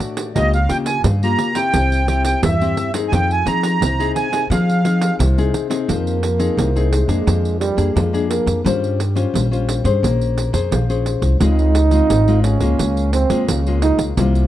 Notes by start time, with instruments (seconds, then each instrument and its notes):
Already playing: nylon-string guitar A2 A3 D4 F#4
0.00 pandeiro
0.17 pandeiro
0.35 upright bass C#2, nylon-string guitar C#3 A#3 F4 G4, accordion D#5, pandeiro
0.53 accordion F5, pandeiro
0.69 upright bass C#3, nylon-string guitar A#3 F4 G4, accordion G5, pandeiro
0.86 accordion G#5, pandeiro
1.04 upright bass G2, nylon-string guitar C#3, pandeiro
1.23 nylon-string guitar A#3 F4 G4, accordion A#5, pandeiro
1.39 pandeiro
1.55 nylon-string guitar C4 E4 G4, accordion G5, pandeiro
1.74 upright bass C2, nylon-string guitar C3, pandeiro
1.92 pandeiro
2.08 nylon-string guitar C4 E4 G4, accordion G5, pandeiro
2.25 accordion G5, pandeiro
2.43 upright bass E2, nylon-string guitar G2, accordion E5, pandeiro
2.61 nylon-string guitar C4 E4 G4, pandeiro
2.77 pandeiro
2.94 nylon-string guitar C4 D#4 G#4, pandeiro
3.08 upright bass F2, nylon-string guitar F3, accordion G#5
3.13 accordion G5, pandeiro
3.31 accordion G#5, pandeiro
3.46 upright bass F3, nylon-string guitar C4 D#4 G#4, accordion A#5, pandeiro
3.63 pandeiro
3.81 upright bass C2, nylon-string guitar C3, pandeiro
3.99 nylon-string guitar C4 D#4 G#4, pandeiro
4.16 accordion G#5, pandeiro
4.32 nylon-string guitar C4 D#4 G#4, pandeiro
4.50 upright bass F3, nylon-string guitar F3 C4 D#4 G#4, accordion F5, pandeiro
4.70 pandeiro
4.84 nylon-string guitar C4 D#4 G#4, pandeiro
5.02 pandeiro
5.19 upright bass C2, nylon-string guitar C3, pandeiro
5.38 nylon-string guitar C4 D#4 G#4, pandeiro
5.54 pandeiro
5.70 nylon-string guitar C4 D#4 G#4, pandeiro
5.88 upright bass F2, nylon-string guitar F3, trombone A#3, pandeiro
6.07 pandeiro
6.23 pandeiro
6.39 nylon-string guitar C4 D#4 G#4, pandeiro
6.57 upright bass C2, nylon-string guitar C3, pandeiro
6.76 nylon-string guitar C4 D#4 G#4, pandeiro
6.92 trombone G#3, pandeiro
7.08 upright bass F2, nylon-string guitar A#3 D4 G#4, pandeiro
7.27 upright bass F2, nylon-string guitar F3, pandeiro
7.45 pandeiro
7.60 trombone G3, pandeiro
7.77 upright bass F2, nylon-string guitar A#3 D4 G#4, pandeiro
7.95 upright bass F2, nylon-string guitar F3, trombone G#3, pandeiro
8.13 nylon-string guitar A#3 D4 G#4, pandeiro
8.29 trombone A#3, pandeiro
8.46 upright bass F2, pandeiro
8.65 upright bass G2, nylon-string guitar G3 C#4 F4 C5, pandeiro
8.84 pandeiro
9.00 pandeiro
9.15 nylon-string guitar C#4 F4 C5, pandeiro
9.34 upright bass A#1, nylon-string guitar G3, pandeiro
9.51 nylon-string guitar C#4 F4 C5, pandeiro
9.69 pandeiro
9.84 upright bass G2, nylon-string guitar C#4 G#4 C5, pandeiro
10.03 upright bass A#1, nylon-string guitar A#3, pandeiro
10.21 pandeiro
10.38 pandeiro
10.53 upright bass F2, nylon-string guitar C#4 G#4 C5, pandeiro
10.71 upright bass A#1, nylon-string guitar F3, pandeiro
10.89 nylon-string guitar C#4 G#4 C5, pandeiro
11.06 pandeiro
11.22 upright bass C2, pandeiro
11.40 upright bass C#2, nylon-string guitar C#3 G#3 C4 F4, trombone D#4, pandeiro
11.59 pandeiro
11.75 pandeiro
11.91 nylon-string guitar G#3 C4 F4, pandeiro
12.10 upright bass G#1, nylon-string guitar G#2, pandeiro
12.28 nylon-string guitar G#3 C4 F4, pandeiro
12.44 trombone C#4, pandeiro
12.60 upright bass C#2, nylon-string guitar G#3 A#3 F4, pandeiro
12.79 upright bass C#2, nylon-string guitar C#3, pandeiro
12.97 pandeiro
13.13 trombone C4, pandeiro
13.30 upright bass F2, nylon-string guitar G#3 A#3 F4, pandeiro
13.48 upright bass C#2, nylon-string guitar C#3, trombone C#4, pandeiro
13.67 nylon-string guitar G#3 A#3 F4, pandeiro
13.82 trombone D#4, pandeiro
13.98 upright bass C#2, pandeiro
14.17 upright bass C2, nylon-string guitar C3 G3 A#3 F4, pandeiro
14.35 pandeiro